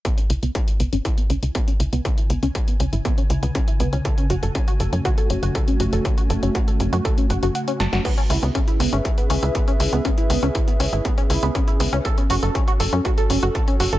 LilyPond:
<<
  \new Staff \with { instrumentName = "Analog synth pad" } { \time 4/4 \key cis \minor \tempo 4 = 120 << { r1 | r1 | <a cis' fis'>1~ | <a cis' fis'>1 |
<gis' b' e''>1~ | <gis' b' e''>1 | <fis' a'>1 | } \\ { r1 | r1 | r1 | r1 |
cis'1~ | cis'1~ | cis'1 | } >> }
  \new Staff \with { instrumentName = "Synth arpeggio sound" } { \time 4/4 \key cis \minor b16 cis'16 e'16 b16 cis'16 e'16 b16 cis'16 e'16 b16 cis'16 e'16 b16 cis'16 e'16 b16 | cis'16 e'16 b16 cis'16 e'16 b16 cis'16 e'16 b16 cis'16 e'16 b16 cis'16 e'16 b16 cis'16 | a'16 cis'16 fis'16 a'16 cis'16 fis'16 a'16 cis'16 fis'16 a'16 cis'16 fis'16 a'16 cis'16 fis'16 a'16 | cis'16 fis'16 a'16 cis'16 fis'16 a'16 cis'16 fis'16 a'16 cis'16 fis''16 fis'16 fis''16 cis'16 a''16 fis'16 |
b16 cis'16 e'16 b16 cis'16 e'16 b16 cis'16 e'16 b16 cis'16 e'16 b16 cis'16 e'16 b16 | cis'16 e'16 b16 cis'16 e'16 b16 cis'16 e'16 b16 cis'16 e'16 b16 cis'16 e'16 b16 cis'16 | a'16 cis'16 fis'16 a'16 cis'16 fis'16 a'16 cis'16 fis'16 a'16 cis'16 fis'16 a'16 cis'16 fis'16 a'16 | }
  \new Staff \with { instrumentName = "Synth drone" } { \clef bass \time 4/4 \key cis \minor cis1~ | cis1~ | cis1~ | cis1 |
r1 | r1 | r1 | }
  \new Staff \with { instrumentName = "Analog synth bass" } { \clef bass \time 4/4 \key cis \minor r8 cis,16 cis,16 r8 cis,16 gis,,16 r8 cis,16 cis,16 r8 cis,16 cis,16 | r8 cis,16 cis,16 r8 cis,16 gis,,16 r8 cis,16 cis,16 r8 cis,16 cis,16 | r8 fis,,16 fis,,16 r8 fis,,16 fis,16 r8 fis,,16 fis,,16 r8 fis,,16 fis,,16 | r8 fis,,16 fis,,16 r8 fis,,16 fis,16 r8 fis,,16 fis,,16 r8 fis,,16 fis,,16 |
r8 cis,16 cis,16 r8 cis,16 gis,,16 r8 cis,16 cis,16 r8 cis,16 cis,16 | r8 cis,16 cis,16 r8 cis,16 gis,,16 r8 cis,16 cis,16 r8 cis,16 cis,16 | r8 fis,,16 fis,,16 r8 fis,,16 fis,16 r8 fis,,16 fis,,16 r8 fis,,16 fis,,16 | }
  \new DrumStaff \with { instrumentName = "Drums" } \drummode { \time 4/4 <hh bd>16 hh16 hh16 hh16 <hh bd>16 hh16 hh16 hh16 <hh bd>16 hh16 hh16 hh16 <hh bd>16 hh16 hh16 hh16 | <hh bd>16 hh16 hh16 hh16 <hh bd>16 hh16 hh16 hh16 <hh bd>16 hh16 hh16 hh16 <hh bd>16 hh16 hh16 hh16 | <hh bd>16 hh16 hh16 hh16 <hh bd>16 hh16 hh16 hh16 <hh bd>16 hh16 hh16 hh16 <hh bd>16 hh16 hh16 hh16 | <hh bd>16 hh16 hh16 hh16 <hh bd>16 hh16 hh16 hh16 <hh bd>16 hh16 hh16 hh16 hh16 hh16 <hh sn>16 <hh sn>16 |
<cymc hh bd>16 hh16 hho16 hh16 <hh bd>16 hh16 hho16 hh16 <hh bd>16 hh16 hho16 hh16 <hh bd>16 hh16 hho16 hh16 | <hh bd>16 hh16 hho16 hh16 <hh bd>16 hh16 hho16 hh16 <hh bd>16 hh16 hho16 hh16 <hh bd>16 hh16 hho16 hh16 | <hh bd>16 hh16 hho16 hh16 <hh bd>16 hh16 hho16 hh16 <hh bd>16 hh16 hho16 hh16 <hh bd>16 hh16 hho16 hh16 | }
>>